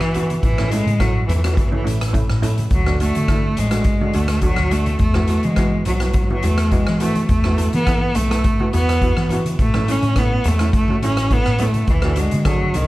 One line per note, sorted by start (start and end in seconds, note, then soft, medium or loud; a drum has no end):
0.00 0.27 E3 medium
0.00 0.38 E3 medium
0.00 cross-stick medium
0.14 0.41 B3 medium
0.14 0.41 E4 medium
0.14 0.41 F#4 medium
0.14 closed hi-hat medium
0.14 low conga soft
0.30 closed hi-hat soft
0.30 high conga medium
0.42 0.81 A1 medium
0.42 0.72 E3 medium
0.42 kick medium
0.42 closed hi-hat soft
0.58 0.67 A3 medium
0.58 0.67 C#4 medium
0.58 0.67 E4 medium
0.58 cross-stick medium
0.58 high conga soft
0.58 low conga medium
0.70 1.01 G#3 medium
0.70 0.90 A3 medium
0.70 0.90 C#4 medium
0.70 0.90 E4 medium
0.70 closed hi-hat medium
0.86 1.23 A2 medium
0.86 closed hi-hat medium
0.86 high conga medium
1.00 1.27 F#3 medium
1.00 1.26 A3 medium
1.00 1.26 C#4 medium
1.00 1.26 E4 medium
1.00 kick medium
1.00 cross-stick medium
1.00 closed hi-hat medium
1.27 1.53 E2 medium
1.27 1.35 E3 medium
1.27 closed hi-hat medium
1.27 low conga medium
1.36 1.43 E3 medium
1.44 1.50 E3 medium
1.44 1.60 A3 medium
1.44 1.60 C#4 medium
1.44 1.61 F#4 medium
1.44 cross-stick medium
1.44 closed hi-hat medium
1.50 1.58 E3 soft
1.57 1.65 E3 medium
1.57 kick loud
1.57 closed hi-hat medium
1.66 1.73 E3 soft
1.71 1.81 E3 medium
1.71 1.80 A3 medium
1.71 1.80 C#4 medium
1.71 1.80 E4 medium
1.71 high conga medium
1.84 2.25 A1 medium
1.84 2.03 A3 medium
1.84 2.03 C#4 medium
1.84 2.03 E4 medium
1.84 closed hi-hat medium
2.01 cross-stick medium
2.01 closed hi-hat medium
2.13 2.32 A3 medium
2.13 2.31 C#4 medium
2.13 2.32 E4 medium
2.13 kick medium
2.13 closed hi-hat medium
2.30 2.66 A2 medium
2.30 cross-stick medium
2.42 2.69 A3 medium
2.42 2.69 C#4 medium
2.42 2.69 E4 medium
2.42 closed hi-hat medium
2.42 low conga medium
2.58 closed hi-hat medium
2.58 high conga medium
2.71 3.09 D2 medium
2.71 2.99 F#3 medium
2.71 kick loud
2.71 closed hi-hat medium
2.86 2.94 A3 medium
2.86 2.94 D4 medium
2.86 2.95 F#4 medium
2.86 cross-stick medium
2.86 high conga medium
2.86 low conga soft
3.00 3.19 A3 medium
3.00 3.60 A3 medium
3.00 3.18 D4 medium
3.00 3.18 F#4 medium
3.00 closed hi-hat medium
3.15 3.53 D3 medium
3.15 closed hi-hat medium
3.15 high conga medium
3.28 3.55 A3 medium
3.28 3.55 D4 medium
3.28 3.55 E4 medium
3.28 kick medium
3.28 cross-stick medium
3.28 closed hi-hat medium
3.57 3.82 A1 medium
3.57 4.17 G#3 medium
3.57 closed hi-hat medium
3.57 low conga medium
3.71 3.89 A3 medium
3.71 3.89 D4 medium
3.71 3.89 F#4 medium
3.71 cross-stick medium
3.71 closed hi-hat medium
3.84 kick loud
3.84 closed hi-hat medium
4.01 4.09 A3 medium
4.01 4.09 D4 medium
4.01 4.09 F#4 medium
4.01 high conga medium
4.13 4.53 D2 medium
4.13 4.32 A3 medium
4.13 4.44 A3 medium
4.13 4.32 D4 medium
4.13 4.32 F#4 medium
4.13 closed hi-hat medium
4.28 cross-stick medium
4.28 closed hi-hat medium
4.41 4.73 F#3 medium
4.41 4.61 A3 medium
4.41 4.61 D4 medium
4.41 4.61 F#4 medium
4.41 kick medium
4.41 closed hi-hat medium
4.56 4.95 D2 medium
4.56 cross-stick medium
4.71 5.00 A3 medium
4.71 4.98 A3 medium
4.71 4.98 D4 medium
4.71 4.98 F#4 medium
4.71 closed hi-hat medium
4.86 closed hi-hat soft
4.86 high conga medium
4.99 5.38 E2 medium
4.99 5.46 A3 medium
4.99 kick medium
4.99 closed hi-hat soft
5.14 5.24 B3 medium
5.14 5.23 E4 medium
5.14 5.24 F#4 medium
5.14 cross-stick medium
5.14 high conga medium
5.14 low conga medium
5.28 5.47 B3 medium
5.28 5.47 E4 medium
5.28 5.47 F#4 medium
5.28 closed hi-hat medium
5.43 5.82 E3 medium
5.43 5.86 G#3 medium
5.43 closed hi-hat soft
5.43 high conga medium
5.56 5.84 B3 medium
5.56 5.84 E4 medium
5.56 5.84 F#4 medium
5.56 kick medium
5.56 cross-stick medium
5.56 closed hi-hat medium
5.85 6.12 B1 medium
5.85 5.94 F#3 medium
5.85 closed hi-hat medium
5.85 low conga medium
5.95 6.02 F#3 medium
6.00 6.10 F#3 medium
6.00 6.18 B3 medium
6.00 6.18 E4 medium
6.00 6.18 F#4 medium
6.00 cross-stick medium
6.00 closed hi-hat medium
6.11 6.17 F#3 medium
6.11 kick loud
6.11 closed hi-hat medium
6.19 6.25 F#3 medium
6.25 6.32 F#3 medium
6.30 6.45 F#3 medium
6.30 6.39 B3 medium
6.30 6.39 E4 medium
6.30 6.38 F#4 medium
6.30 high conga medium
6.43 6.82 E2 medium
6.43 6.73 A3 medium
6.43 6.62 B3 medium
6.43 6.61 E4 medium
6.43 6.62 F#4 medium
6.43 closed hi-hat medium
6.58 cross-stick medium
6.58 closed hi-hat medium
6.71 7.01 G#3 medium
6.71 6.90 B3 medium
6.71 6.90 E4 medium
6.71 6.90 F#4 medium
6.71 kick medium
6.71 closed hi-hat medium
6.87 7.25 E3 medium
6.87 cross-stick medium
7.00 7.28 A3 medium
7.00 7.27 B3 medium
7.00 7.27 E4 medium
7.00 7.27 F#4 medium
7.00 closed hi-hat medium
7.00 low conga medium
7.15 closed hi-hat medium
7.15 high conga medium
7.29 7.68 E2 medium
7.29 7.70 A3 medium
7.29 kick medium
7.29 closed hi-hat soft
7.44 7.53 B3 medium
7.44 7.53 E4 medium
7.44 7.53 F#4 medium
7.44 cross-stick medium
7.44 low conga medium
7.57 7.76 B3 medium
7.57 7.76 E4 medium
7.57 7.76 A4 medium
7.57 closed hi-hat medium
7.73 8.11 E3 medium
7.73 8.17 B3 medium
7.73 closed hi-hat medium
7.73 high conga medium
7.87 8.13 B3 medium
7.87 8.13 E4 medium
7.87 8.13 A4 medium
7.87 kick medium
7.87 cross-stick medium
7.87 closed hi-hat medium
8.15 8.41 B1 medium
8.15 8.73 A3 medium
8.15 closed hi-hat medium
8.15 low conga medium
8.30 8.47 B3 medium
8.30 8.47 E4 medium
8.30 8.47 A4 medium
8.30 cross-stick medium
8.30 closed hi-hat medium
8.44 kick loud
8.44 closed hi-hat medium
8.60 8.68 B3 medium
8.60 8.68 E4 medium
8.60 8.68 F#4 medium
8.60 high conga medium
8.73 9.12 E2 medium
8.73 8.91 B3 medium
8.73 9.27 B3 medium
8.73 8.91 E4 medium
8.73 8.91 F#4 medium
8.73 closed hi-hat medium
8.89 cross-stick medium
8.89 closed hi-hat medium
9.02 9.20 B3 medium
9.02 9.21 E4 medium
9.02 9.20 F#4 medium
9.02 kick medium
9.02 closed hi-hat medium
9.17 9.54 E3 medium
9.17 cross-stick medium
9.29 9.57 B3 medium
9.29 9.57 E4 medium
9.29 9.57 F#4 medium
9.29 closed hi-hat medium
9.29 low conga medium
9.46 closed hi-hat medium
9.46 high conga medium
9.59 9.98 A1 medium
9.59 9.93 A3 medium
9.59 kick medium
9.59 closed hi-hat soft
9.74 9.83 A3 medium
9.74 9.83 C#4 medium
9.74 9.83 E4 medium
9.74 cross-stick medium
9.74 high conga medium
9.74 low conga medium
9.88 10.06 A3 medium
9.88 10.06 C#4 medium
9.88 10.20 C#4 loud
9.88 10.06 E4 medium
9.88 closed hi-hat medium
10.02 10.40 A2 medium
10.02 closed hi-hat soft
10.02 high conga medium
10.16 10.44 A3 medium
10.16 10.49 B3 medium
10.16 10.43 C#4 medium
10.16 10.43 E4 medium
10.16 kick medium
10.16 cross-stick medium
10.16 closed hi-hat medium
10.44 10.70 E2 loud
10.44 10.75 A3 medium
10.44 closed hi-hat medium
10.44 low conga medium
10.59 10.77 A3 medium
10.59 10.77 C#4 medium
10.59 10.77 E4 medium
10.59 cross-stick medium
10.59 closed hi-hat medium
10.73 11.02 A3 medium
10.73 kick loud
10.73 closed hi-hat medium
10.88 10.97 A3 medium
10.88 10.98 C#4 medium
10.88 10.98 F#4 medium
10.88 high conga medium
11.02 11.41 A1 medium
11.02 11.21 A3 medium
11.02 11.21 C#4 medium
11.02 11.34 C#4 medium
11.02 11.21 E4 medium
11.02 closed hi-hat medium
11.17 cross-stick medium
11.17 closed hi-hat medium
11.31 11.49 A3 medium
11.31 11.63 B3 loud
11.31 11.49 C#4 medium
11.31 11.49 E4 medium
11.31 kick medium
11.31 closed hi-hat soft
11.46 11.84 A2 medium
11.46 cross-stick medium
11.58 11.86 A3 medium
11.58 11.91 A3 medium
11.58 11.86 C#4 medium
11.58 11.86 E4 medium
11.58 closed hi-hat medium
11.58 low conga medium
11.74 closed hi-hat soft
11.74 high conga medium
11.87 12.26 D2 medium
11.87 12.21 E3 medium
11.87 kick medium
11.87 closed hi-hat soft
12.02 12.12 A3 medium
12.02 12.12 D4 medium
12.02 12.12 F#4 medium
12.02 cross-stick medium
12.02 high conga medium
12.16 12.46 G#3 medium
12.16 12.35 A3 medium
12.16 12.35 D4 medium
12.16 12.35 F#4 medium
12.16 closed hi-hat medium
12.31 12.70 D3 medium
12.31 closed hi-hat medium
12.31 high conga medium
12.45 12.77 F#3 medium
12.45 12.71 A3 medium
12.45 12.72 D4 medium
12.45 12.72 G#4 medium
12.45 kick medium
12.45 cross-stick medium
12.45 closed hi-hat medium
12.61 high conga medium
12.74 12.87 C2 medium
12.74 12.87 D#3 medium
12.74 closed hi-hat medium
12.74 low conga medium